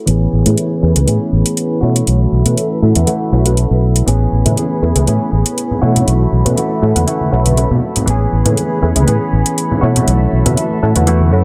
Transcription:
0.06 fingered electric bass A1, clean electric guitar E3 B3 C#4, violin section G#4 C#5 B5, closed hi-hat
0.10 clean electric guitar G#4
0.33 fingered electric bass A1
0.45 fingered electric bass A2, analog polysynth A3 C#4 E4 G#4 B4, closed hi-hat
0.57 closed hi-hat
0.82 fingered electric bass E2, analog polysynth A3 C#4 E4 G#4 B4
0.95 fingered electric bass C#2, analog polysynth A3 C#4 E4 G#4 B4, closed hi-hat
1.07 fingered electric bass A2, clean electric guitar E3 B3 C#4 G#4, closed hi-hat
1.32 fingered electric bass A1
1.46 closed hi-hat
1.57 closed hi-hat
1.81 fingered electric bass B2, analog polysynth A3 C#4 E4 F#4 C#5, clean electric guitar A3 E4 F#4, violin section A4 E5
1.85 clean electric guitar E3
1.96 closed hi-hat
2.07 fingered electric bass B1, closed hi-hat
2.32 fingered electric bass B1
2.45 fingered electric bass B2, analog polysynth A3 C#4 E4 F#4 B4, closed hi-hat
2.57 closed hi-hat
2.82 fingered electric bass A2, analog polysynth A3 C#4 E4 F#4 A4
2.95 fingered electric bass E2, analog polysynth A3 C#4 E4 F#4 B4, closed hi-hat
3.06 clean electric guitar E3 A3 E4 F#4, closed hi-hat
3.32 fingered electric bass B1, analog polysynth A3 C#4 E4 F#4 B4, clean electric guitar A3 E4 F#4
3.45 analog polysynth A3 C#4 E4 F#4 B4, closed hi-hat
3.57 closed hi-hat
3.71 fingered electric bass B1
3.96 closed hi-hat
4.06 fingered electric bass A1, clean electric guitar E3 B3 C#4 G#4, violin section G#4 C#5 B5, closed hi-hat
4.32 fingered electric bass A1, shaker
4.45 fingered electric bass A2, analog polysynth A3 C#4 E4 G#4 B4, closed hi-hat, high conga, low conga, shaker
4.56 clean electric guitar E3 B3 C#4 G#4, closed hi-hat, shaker
4.82 fingered electric bass E2, analog polysynth A3 C#4 E4 G#4 B4, shaker
4.95 fingered electric bass C#2, analog polysynth A3 C#4 E4 G#4 B4, closed hi-hat, high conga, shaker
5.07 fingered electric bass A2, clean electric guitar E3 B3 C#4 G#4, closed hi-hat, shaker
5.32 fingered electric bass A1, clean electric guitar B3 C#4 G#4, shaker
5.46 closed hi-hat
5.58 closed hi-hat, shaker
5.71 low conga
5.82 fingered electric bass B2, clean electric guitar E3 A3 E4 F#4, analog polysynth A3 C#4 E4 F#4 C#5, violin section A4 E5 B5, shaker
5.96 closed hi-hat, low conga, shaker
6.07 fingered electric bass B1, closed hi-hat, shaker
6.32 fingered electric bass B1, shaker
6.45 fingered electric bass B2, analog polysynth A3 C#4 E4 F#4 B4, closed hi-hat, low conga, shaker
6.56 clean electric guitar E3 A3 E4 F#4, closed hi-hat, shaker
6.82 fingered electric bass A2, analog polysynth A3 C#4 E4 F#4 A4, shaker
6.95 fingered electric bass E2, analog polysynth A3 C#4 E4 F#4 B4, closed hi-hat, high conga, shaker
7.07 clean electric guitar E3 A3 E4 F#4, closed hi-hat, shaker
7.21 high conga
7.31 fingered electric bass B1, analog polysynth A3 C#4 E4 F#4 B4, clean electric guitar A3 E4 F#4, shaker
7.46 closed hi-hat, high conga, shaker
7.57 analog polysynth A3 C#4 E4 F#4 B4, closed hi-hat, shaker
7.71 fingered electric bass B2, low conga
7.82 shaker
7.96 closed hi-hat, low conga, shaker
8.06 fingered electric bass A1, clean electric guitar E3 B3 C#4, violin section G#4 C#5 B5, closed hi-hat, shaker
8.10 clean electric guitar G#4
8.32 fingered electric bass A1, shaker
8.45 fingered electric bass A2, analog polysynth A3 C#4 E4 G#4 B4, closed hi-hat, high conga, low conga, shaker
8.57 closed hi-hat, shaker
8.82 fingered electric bass E2, analog polysynth A3 C#4 E4 G#4 B4, shaker
8.95 fingered electric bass C#2, analog polysynth A3 C#4 E4 G#4 B4, closed hi-hat, high conga, shaker
9.07 fingered electric bass A2, clean electric guitar E3 B3 C#4 G#4, closed hi-hat, shaker
9.32 fingered electric bass A1, shaker
9.46 closed hi-hat
9.58 closed hi-hat
9.71 low conga
9.81 fingered electric bass B2, analog polysynth A3 C#4 E4 F#4 C#5, clean electric guitar A3 E4 F#4, violin section A4 E5, shaker
9.86 clean electric guitar E3
9.96 closed hi-hat, low conga, shaker
10.08 fingered electric bass B1, closed hi-hat, shaker
10.32 fingered electric bass B1, shaker
10.45 fingered electric bass B2, analog polysynth A3 C#4 E4 F#4 B4, closed hi-hat, high conga, low conga, shaker
10.57 closed hi-hat, shaker
10.82 fingered electric bass A2, analog polysynth A3 C#4 E4 F#4 A4, shaker
10.95 fingered electric bass E2, analog polysynth A3 C#4 E4 F#4 B4, closed hi-hat, high conga, shaker
11.07 clean electric guitar E3 A3 E4 F#4, closed hi-hat, shaker
11.21 high conga
11.32 fingered electric bass F#2, analog polysynth A3 C#4 E4 F#4 B4, clean electric guitar A3 E4 F#4, shaker

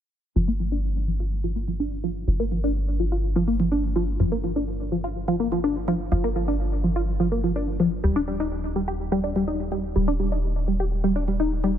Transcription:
0.36 analog synth bass G1, synth arpeggio sound F3
0.48 synth arpeggio sound A#3
0.60 synth arpeggio sound F3
0.72 synth arpeggio sound D4
1.08 synth arpeggio sound F3
1.20 synth arpeggio sound F4
1.44 synth arpeggio sound F3
1.56 synth arpeggio sound A#3
1.68 synth arpeggio sound F3
1.80 synth arpeggio sound D4
2.04 synth arpeggio sound F3
2.28 analog synth bass G1, synth arpeggio sound F3
2.40 synth arpeggio sound A#3
2.52 synth arpeggio sound F3
2.64 synth arpeggio sound D4
3.00 synth arpeggio sound F3
3.12 synth arpeggio sound F4
3.36 synth arpeggio sound F3
3.48 synth arpeggio sound A#3
3.60 synth arpeggio sound F3
3.72 synth arpeggio sound D4
3.96 synth arpeggio sound F3
4.20 analog synth bass G1, synth arpeggio sound F3
4.32 synth arpeggio sound A#3
4.44 synth arpeggio sound F3
4.56 synth arpeggio sound D4
4.92 synth arpeggio sound F3
5.04 synth arpeggio sound F4
5.28 synth arpeggio sound F3
5.40 synth arpeggio sound A#3
5.52 synth arpeggio sound F3
5.64 synth arpeggio sound D4
5.88 synth arpeggio sound F3
6.12 analog synth bass G1, synth arpeggio sound F3
6.24 synth arpeggio sound A#3
6.36 synth arpeggio sound F3
6.48 synth arpeggio sound D4
6.84 synth arpeggio sound F3
6.96 synth arpeggio sound F4
7.20 synth arpeggio sound F3
7.32 synth arpeggio sound A#3
7.44 synth arpeggio sound F3
7.56 synth arpeggio sound D4
7.80 synth arpeggio sound F3
8.04 analog synth bass D#1, synth arpeggio sound G3
8.16 synth arpeggio sound D4
8.28 synth arpeggio sound G3
8.40 synth arpeggio sound D#4
8.76 synth arpeggio sound G3
8.88 synth arpeggio sound G4
9.12 synth arpeggio sound G3
9.24 synth arpeggio sound D4
9.36 synth arpeggio sound G3
9.48 synth arpeggio sound D#4
9.72 synth arpeggio sound G3
9.96 analog synth bass D#1, synth arpeggio sound G3
10.08 synth arpeggio sound D4
10.20 synth arpeggio sound G3
10.32 synth arpeggio sound D#4
10.68 synth arpeggio sound G3
10.80 synth arpeggio sound G4
11.04 synth arpeggio sound G3
11.16 synth arpeggio sound D4
11.28 synth arpeggio sound G3
11.40 synth arpeggio sound D#4
11.64 synth arpeggio sound G3

